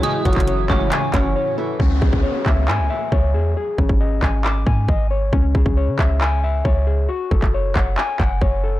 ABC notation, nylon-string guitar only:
X:1
M:4/4
L:1/8
Q:1/4=136
K:C#m
V:1 name="Nylon-string guitar"
[G,G] [F,F]3 z [Cc]2 [E,E] | z8 | z8 | z8 |
z8 |]